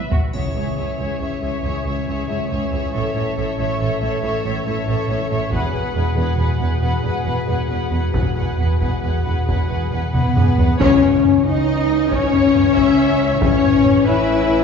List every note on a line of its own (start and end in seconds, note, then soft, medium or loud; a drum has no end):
0.11 0.19 B1 soft
0.11 0.19 F#4 soft
0.11 taiko low medium
0.33 0.41 C#2 soft
0.33 0.42 C#2 soft
0.33 0.95 C#3 soft
0.33 5.48 E3 soft
0.33 5.49 C#4 soft
0.33 0.54 G#4 soft
0.33 0.55 C#5 soft
0.33 0.55 E5 soft
0.33 taiko soft
0.33 impact soft
0.33 triangle soft
0.55 0.63 C#2 soft
0.55 0.76 G#4 soft
0.55 0.76 C#5 soft
0.55 0.75 E5 soft
0.77 0.85 C#2 soft
0.77 0.86 C#2 soft
0.77 0.98 G#4 soft
0.77 0.97 C#5 soft
0.77 0.98 E5 soft
0.99 1.07 C#2 soft
0.99 1.20 G#4 soft
0.99 1.20 C#5 soft
0.99 1.19 E5 soft
1.20 1.28 C#2 soft
1.20 1.29 C#2 soft
1.20 1.41 G#4 soft
1.20 1.42 C#5 soft
1.20 1.40 E5 soft
1.32 taiko soft
1.42 1.50 C#2 soft
1.42 1.63 G#4 soft
1.42 1.63 C#5 soft
1.42 1.61 E5 soft
1.63 1.71 C#2 soft
1.63 1.72 C#2 soft
1.63 1.84 G#4 soft
1.63 1.85 C#5 soft
1.63 1.85 E5 soft
1.84 1.92 C#2 soft
1.84 1.95 C#2 soft
1.84 2.07 G#4 soft
1.84 2.07 C#5 soft
1.84 2.06 E5 soft
2.07 2.15 C#2 soft
2.07 2.16 C#2 soft
2.07 2.29 G#4 soft
2.07 2.27 C#5 soft
2.07 2.27 E5 soft
2.28 2.37 C#2 soft
2.28 2.50 G#4 soft
2.28 2.49 C#5 soft
2.28 2.48 E5 soft
2.49 2.59 C#2 soft
2.49 2.72 G#4 soft
2.49 2.72 C#5 soft
2.49 2.71 E5 soft
2.72 2.80 C#2 soft
2.72 2.81 C#2 soft
2.72 2.94 G#4 soft
2.72 2.93 C#5 soft
2.72 2.93 E5 soft
2.94 3.02 A1 medium
2.94 3.02 A2 soft
2.94 3.14 A4 soft
2.94 3.15 C#5 soft
2.94 3.15 E5 soft
3.15 3.24 A1 soft
3.15 3.24 A2 soft
3.15 3.35 A4 soft
3.15 3.37 C#5 soft
3.15 3.35 E5 soft
3.36 3.45 A1 soft
3.36 3.46 A2 soft
3.36 3.56 A4 soft
3.36 3.58 C#5 soft
3.36 3.58 E5 soft
3.57 3.66 A1 soft
3.57 3.67 A2 soft
3.57 3.78 A4 soft
3.57 3.80 C#5 soft
3.57 3.80 E5 soft
3.79 3.88 A1 soft
3.79 3.88 A2 soft
3.79 4.01 A4 soft
3.79 4.01 C#5 soft
3.79 4.00 E5 soft
4.01 4.09 A1 soft
4.01 4.09 A2 soft
4.01 4.22 A4 soft
4.01 4.23 C#5 soft
4.01 4.21 E5 soft
4.22 4.30 A1 medium
4.22 4.30 A2 medium
4.22 4.43 A4 soft
4.22 4.44 C#5 medium
4.22 4.42 E5 soft
4.44 4.52 A1 medium
4.44 4.53 A2 soft
4.44 4.64 A4 soft
4.44 4.65 C#5 soft
4.44 4.65 E5 soft
4.65 4.73 A1 soft
4.65 4.74 A2 medium
4.65 4.87 A4 soft
4.65 4.87 C#5 soft
4.65 4.87 E5 soft
4.87 4.95 A1 medium
4.87 4.95 A2 soft
4.87 5.08 A4 soft
4.87 5.08 C#5 soft
4.87 5.08 E5 soft
5.09 5.17 A1 medium
5.09 5.17 A2 medium
5.09 5.28 A4 soft
5.09 5.29 C#5 soft
5.09 5.30 E5 soft
5.29 5.38 A1 medium
5.29 5.38 A2 soft
5.29 5.51 A4 soft
5.29 5.52 C#5 soft
5.29 5.52 E5 soft
5.51 5.60 E1 medium
5.51 5.60 E2 medium
5.51 9.95 G#3 medium
5.51 9.95 F#4 soft
5.51 5.71 G#4 soft
5.51 5.72 B4 soft
5.51 5.74 F#5 soft
5.51 taiko medium
5.72 5.81 E1 soft
5.72 5.82 E2 soft
5.72 5.93 G#4 soft
5.72 5.94 B4 soft
5.72 5.96 F#5 soft
5.94 6.03 E1 soft
5.94 6.03 E2 soft
5.94 6.15 G#4 soft
5.94 6.16 B4 soft
5.94 6.16 F#5 soft
6.16 6.24 E1 medium
6.16 6.24 E2 soft
6.16 6.36 G#4 soft
6.16 6.36 B4 soft
6.16 6.38 F#5 soft
6.37 6.46 E1 soft
6.37 6.46 E2 soft
6.37 6.59 G#4 soft
6.37 6.58 B4 soft
6.37 6.58 F#5 soft
6.59 6.68 E1 soft
6.59 6.68 E2 soft
6.59 6.80 G#4 soft
6.59 6.80 B4 soft
6.59 6.81 F#5 soft
6.81 6.90 E1 soft
6.81 6.90 E2 soft
6.81 7.03 G#4 soft
6.81 7.03 B4 soft
6.81 7.03 F#5 soft
7.03 7.11 E1 soft
7.03 7.12 E2 soft
7.03 7.25 G#4 soft
7.03 7.25 B4 soft
7.03 7.25 F#5 soft
7.25 7.34 E1 soft
7.25 7.33 E2 soft
7.25 7.47 G#4 soft
7.25 7.46 B4 soft
7.25 7.47 F#5 soft
7.47 7.57 E1 soft
7.47 7.55 E2 soft
7.47 7.68 G#4 soft
7.47 7.68 B4 soft
7.47 7.68 F#5 soft
7.69 7.78 E1 soft
7.69 7.77 E2 soft
7.69 7.90 G#4 soft
7.69 7.90 B4 soft
7.69 7.91 F#5 soft
7.91 8.00 E1 soft
7.91 7.99 E2 soft
7.91 8.12 G#4 soft
7.91 8.11 B4 soft
7.91 8.13 F#5 soft
8.12 8.22 E1 soft
8.12 8.21 E2 soft
8.12 8.35 G#4 soft
8.12 8.33 B4 soft
8.12 8.35 F#5 soft
8.12 taiko medium
8.34 8.44 E1 soft
8.34 8.44 E2 soft
8.34 8.57 G#4 soft
8.34 8.56 B4 soft
8.34 8.57 F#5 soft
8.57 8.67 E1 soft
8.57 8.66 E2 soft
8.57 8.79 G#4 soft
8.57 8.78 B4 soft
8.57 8.79 F#5 soft
8.79 8.89 E1 soft
8.79 8.88 E2 soft
8.79 9.01 G#4 soft
8.79 9.00 B4 soft
8.79 9.02 F#5 soft
8.79 taiko medium
9.01 9.12 E1 soft
9.01 9.11 E2 soft
9.01 9.23 G#4 soft
9.01 9.22 B4 soft
9.01 9.24 F#5 soft
9.23 9.34 E1 soft
9.23 9.34 E2 soft
9.23 9.46 G#4 soft
9.23 9.44 B4 soft
9.23 9.46 F#5 soft
9.46 9.56 E1 soft
9.46 9.56 E2 soft
9.46 9.67 G#4 soft
9.46 9.66 B4 soft
9.46 9.69 F#5 soft
9.46 taiko medium
9.67 9.78 E1 soft
9.67 9.78 E2 soft
9.67 9.90 G#4 soft
9.67 9.89 B4 soft
9.67 9.90 F#5 soft
9.90 9.99 E1 soft
9.90 10.01 E2 soft
9.90 10.13 G#4 soft
9.90 10.11 B4 soft
9.90 10.12 F#5 soft
10.12 10.22 E1 soft
10.12 10.22 E2 soft
10.12 10.75 B3 medium
10.12 10.77 B3 soft
10.12 10.35 G#4 soft
10.12 10.34 B4 soft
10.12 10.76 B4 soft
10.12 10.35 F#5 soft
10.12 taiko mid medium
10.35 10.44 E1 soft
10.35 10.44 E2 soft
10.35 10.58 G#4 soft
10.35 10.57 B4 soft
10.35 10.58 F#5 soft
10.35 taiko low-mid medium
10.58 10.66 E1 soft
10.58 10.67 E2 soft
10.58 10.80 G#4 soft
10.58 10.80 B4 soft
10.58 10.81 F#5 soft
10.58 taiko low medium
10.79 13.37 C#2 medium
10.79 13.37 C#3 medium
10.79 11.41 C#3 medium
10.79 14.64 E3 medium
10.79 11.41 C#4 medium
10.79 14.64 C#4 medium
10.79 11.41 C#4 medium
10.79 11.42 C#5 medium
10.79 taiko medium
10.79 impact medium
11.03 taiko low-mid soft
11.25 taiko low-mid medium
11.46 12.09 D#4 medium
11.46 12.10 D#4 medium
11.46 12.11 D#5 medium
12.10 13.40 C#4 medium
12.10 12.72 C#5 medium
12.10 13.41 C#5 medium
12.10 taiko medium
12.34 taiko low-mid soft
12.56 taiko low-mid medium
12.75 13.40 E5 medium
12.75 taiko medium
13.40 14.64 A1 medium
13.40 14.64 A2 medium
13.40 14.05 C#4 medium
13.40 14.04 C#5 medium
13.40 14.06 C#5 medium
13.40 taiko medium
13.63 taiko low-mid soft
13.85 taiko low-mid medium
14.06 14.64 E4 medium
14.06 14.64 B4 medium
14.06 14.64 E5 medium